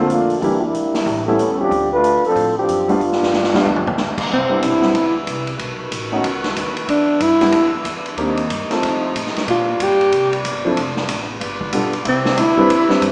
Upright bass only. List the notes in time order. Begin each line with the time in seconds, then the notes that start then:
Already playing: F2
0.42 E2
0.73 G#1
1.06 A1
1.39 D#2
1.71 D2
2.24 muted upright bass stroke
2.36 A2
2.68 F#2
3.00 G2
3.65 D2
4.18 muted upright bass stroke
4.30 C2
4.49 muted upright bass stroke
4.62 B1
4.94 D2
5.27 C2
5.59 B1
5.91 A1
6.24 C#2
6.56 D#2
6.88 E2
7.20 G2
7.85 E2
8.17 D#2
8.50 G2
8.69 muted upright bass stroke
8.83 F2
9.15 A2
9.36 muted upright bass stroke
9.47 A#2
9.79 G2
10.12 C2
10.45 G1
10.76 F1
11.09 A1
11.40 G1
11.72 B1
12.05 C2
12.37 D2
12.58 muted upright bass stroke
12.69 E2
13.02 G2